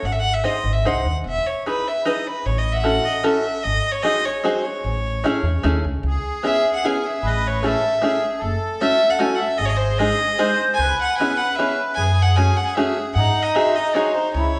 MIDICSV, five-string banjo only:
0, 0, Header, 1, 2, 480
1, 0, Start_track
1, 0, Tempo, 405954
1, 41, Time_signature, 3, 2, 24, 8
1, 2922, Tempo, 396040
1, 17616, End_track
2, 0, Start_track
2, 0, Title_t, "Five-string banjo"
2, 0, Program_c, 0, 105
2, 517, Note_on_c, 0, 60, 60
2, 525, Note_on_c, 0, 72, 64
2, 526, Note_on_c, 0, 63, 48
2, 526, Note_on_c, 0, 68, 55
2, 765, Note_off_c, 0, 60, 0
2, 767, Note_off_c, 0, 63, 0
2, 767, Note_off_c, 0, 72, 0
2, 769, Note_off_c, 0, 68, 0
2, 1008, Note_on_c, 0, 60, 56
2, 1016, Note_on_c, 0, 63, 55
2, 1017, Note_on_c, 0, 68, 55
2, 1021, Note_on_c, 0, 72, 65
2, 1256, Note_off_c, 0, 60, 0
2, 1258, Note_off_c, 0, 63, 0
2, 1258, Note_off_c, 0, 72, 0
2, 1259, Note_off_c, 0, 68, 0
2, 1966, Note_on_c, 0, 63, 53
2, 1974, Note_on_c, 0, 71, 63
2, 1975, Note_on_c, 0, 64, 54
2, 1976, Note_on_c, 0, 68, 57
2, 2212, Note_off_c, 0, 63, 0
2, 2214, Note_off_c, 0, 71, 0
2, 2216, Note_off_c, 0, 68, 0
2, 2217, Note_off_c, 0, 64, 0
2, 2427, Note_on_c, 0, 63, 66
2, 2435, Note_on_c, 0, 64, 65
2, 2435, Note_on_c, 0, 68, 54
2, 2449, Note_on_c, 0, 71, 62
2, 2680, Note_off_c, 0, 63, 0
2, 2683, Note_off_c, 0, 64, 0
2, 2683, Note_off_c, 0, 68, 0
2, 2690, Note_off_c, 0, 71, 0
2, 3365, Note_on_c, 0, 61, 64
2, 3369, Note_on_c, 0, 64, 56
2, 3372, Note_on_c, 0, 69, 62
2, 3375, Note_on_c, 0, 66, 56
2, 3627, Note_off_c, 0, 61, 0
2, 3628, Note_off_c, 0, 64, 0
2, 3630, Note_off_c, 0, 69, 0
2, 3632, Note_off_c, 0, 66, 0
2, 3848, Note_on_c, 0, 61, 66
2, 3856, Note_on_c, 0, 64, 55
2, 3857, Note_on_c, 0, 69, 74
2, 3858, Note_on_c, 0, 66, 63
2, 4108, Note_off_c, 0, 61, 0
2, 4110, Note_off_c, 0, 66, 0
2, 4111, Note_off_c, 0, 64, 0
2, 4111, Note_off_c, 0, 69, 0
2, 4814, Note_on_c, 0, 60, 67
2, 4822, Note_on_c, 0, 63, 57
2, 4829, Note_on_c, 0, 66, 49
2, 4829, Note_on_c, 0, 68, 70
2, 5066, Note_off_c, 0, 60, 0
2, 5071, Note_off_c, 0, 63, 0
2, 5072, Note_off_c, 0, 66, 0
2, 5073, Note_off_c, 0, 68, 0
2, 5302, Note_on_c, 0, 63, 57
2, 5314, Note_on_c, 0, 60, 63
2, 5321, Note_on_c, 0, 66, 62
2, 5321, Note_on_c, 0, 68, 77
2, 5551, Note_off_c, 0, 63, 0
2, 5557, Note_off_c, 0, 60, 0
2, 5558, Note_off_c, 0, 68, 0
2, 5560, Note_off_c, 0, 66, 0
2, 6275, Note_on_c, 0, 57, 74
2, 6281, Note_on_c, 0, 61, 66
2, 6284, Note_on_c, 0, 64, 73
2, 6298, Note_on_c, 0, 68, 90
2, 6522, Note_off_c, 0, 57, 0
2, 6525, Note_off_c, 0, 64, 0
2, 6526, Note_off_c, 0, 61, 0
2, 6533, Note_off_c, 0, 68, 0
2, 6754, Note_on_c, 0, 57, 75
2, 6761, Note_on_c, 0, 61, 66
2, 6763, Note_on_c, 0, 68, 81
2, 6771, Note_on_c, 0, 64, 66
2, 7006, Note_off_c, 0, 57, 0
2, 7007, Note_off_c, 0, 61, 0
2, 7010, Note_off_c, 0, 68, 0
2, 7014, Note_off_c, 0, 64, 0
2, 7721, Note_on_c, 0, 59, 62
2, 7728, Note_on_c, 0, 61, 54
2, 7733, Note_on_c, 0, 64, 52
2, 7737, Note_on_c, 0, 68, 67
2, 7972, Note_off_c, 0, 59, 0
2, 7972, Note_off_c, 0, 64, 0
2, 7973, Note_off_c, 0, 61, 0
2, 7979, Note_off_c, 0, 68, 0
2, 8223, Note_on_c, 0, 64, 59
2, 8225, Note_on_c, 0, 59, 60
2, 8226, Note_on_c, 0, 61, 56
2, 8235, Note_on_c, 0, 68, 77
2, 8462, Note_off_c, 0, 64, 0
2, 8464, Note_off_c, 0, 59, 0
2, 8465, Note_off_c, 0, 61, 0
2, 8467, Note_off_c, 0, 68, 0
2, 9172, Note_on_c, 0, 57, 59
2, 9182, Note_on_c, 0, 61, 54
2, 9183, Note_on_c, 0, 64, 57
2, 9188, Note_on_c, 0, 68, 63
2, 9410, Note_off_c, 0, 57, 0
2, 9415, Note_off_c, 0, 64, 0
2, 9416, Note_off_c, 0, 61, 0
2, 9418, Note_off_c, 0, 68, 0
2, 9642, Note_on_c, 0, 57, 66
2, 9652, Note_on_c, 0, 64, 56
2, 9658, Note_on_c, 0, 61, 57
2, 9661, Note_on_c, 0, 68, 77
2, 9881, Note_off_c, 0, 57, 0
2, 9883, Note_off_c, 0, 64, 0
2, 9887, Note_off_c, 0, 68, 0
2, 9890, Note_off_c, 0, 61, 0
2, 10606, Note_on_c, 0, 57, 59
2, 10608, Note_on_c, 0, 61, 61
2, 10612, Note_on_c, 0, 66, 66
2, 10619, Note_on_c, 0, 64, 57
2, 10837, Note_off_c, 0, 61, 0
2, 10838, Note_off_c, 0, 66, 0
2, 10839, Note_off_c, 0, 57, 0
2, 10844, Note_off_c, 0, 64, 0
2, 11062, Note_on_c, 0, 57, 70
2, 11066, Note_on_c, 0, 61, 60
2, 11067, Note_on_c, 0, 64, 65
2, 11074, Note_on_c, 0, 66, 74
2, 11307, Note_off_c, 0, 57, 0
2, 11308, Note_off_c, 0, 61, 0
2, 11310, Note_off_c, 0, 64, 0
2, 11311, Note_off_c, 0, 66, 0
2, 12036, Note_on_c, 0, 56, 64
2, 12043, Note_on_c, 0, 60, 54
2, 12051, Note_on_c, 0, 63, 56
2, 12051, Note_on_c, 0, 68, 67
2, 12280, Note_off_c, 0, 56, 0
2, 12284, Note_off_c, 0, 60, 0
2, 12285, Note_off_c, 0, 63, 0
2, 12287, Note_off_c, 0, 68, 0
2, 12515, Note_on_c, 0, 56, 60
2, 12519, Note_on_c, 0, 63, 53
2, 12519, Note_on_c, 0, 68, 72
2, 12523, Note_on_c, 0, 60, 49
2, 12763, Note_off_c, 0, 56, 0
2, 12764, Note_off_c, 0, 68, 0
2, 12765, Note_off_c, 0, 63, 0
2, 12767, Note_off_c, 0, 60, 0
2, 13499, Note_on_c, 0, 61, 53
2, 13506, Note_on_c, 0, 59, 61
2, 13514, Note_on_c, 0, 64, 55
2, 13516, Note_on_c, 0, 68, 60
2, 13739, Note_off_c, 0, 61, 0
2, 13743, Note_off_c, 0, 59, 0
2, 13745, Note_off_c, 0, 68, 0
2, 13746, Note_off_c, 0, 64, 0
2, 13967, Note_on_c, 0, 59, 55
2, 13971, Note_on_c, 0, 61, 64
2, 13977, Note_on_c, 0, 68, 78
2, 13979, Note_on_c, 0, 64, 60
2, 14216, Note_off_c, 0, 61, 0
2, 14217, Note_off_c, 0, 59, 0
2, 14218, Note_off_c, 0, 64, 0
2, 14220, Note_off_c, 0, 68, 0
2, 14913, Note_on_c, 0, 61, 61
2, 14919, Note_on_c, 0, 57, 63
2, 14924, Note_on_c, 0, 68, 64
2, 14925, Note_on_c, 0, 66, 53
2, 15163, Note_off_c, 0, 61, 0
2, 15167, Note_off_c, 0, 57, 0
2, 15168, Note_off_c, 0, 68, 0
2, 15169, Note_off_c, 0, 66, 0
2, 15402, Note_on_c, 0, 57, 66
2, 15406, Note_on_c, 0, 61, 61
2, 15409, Note_on_c, 0, 68, 77
2, 15413, Note_on_c, 0, 66, 70
2, 15644, Note_off_c, 0, 57, 0
2, 15647, Note_off_c, 0, 61, 0
2, 15647, Note_off_c, 0, 68, 0
2, 15650, Note_off_c, 0, 66, 0
2, 16354, Note_on_c, 0, 60, 64
2, 16359, Note_on_c, 0, 63, 59
2, 16361, Note_on_c, 0, 66, 61
2, 16363, Note_on_c, 0, 68, 69
2, 16602, Note_off_c, 0, 60, 0
2, 16602, Note_off_c, 0, 66, 0
2, 16603, Note_off_c, 0, 63, 0
2, 16605, Note_off_c, 0, 68, 0
2, 16829, Note_on_c, 0, 60, 61
2, 16839, Note_on_c, 0, 63, 63
2, 16846, Note_on_c, 0, 68, 74
2, 16848, Note_on_c, 0, 66, 66
2, 17078, Note_off_c, 0, 60, 0
2, 17083, Note_off_c, 0, 63, 0
2, 17086, Note_off_c, 0, 68, 0
2, 17088, Note_off_c, 0, 66, 0
2, 17616, End_track
0, 0, End_of_file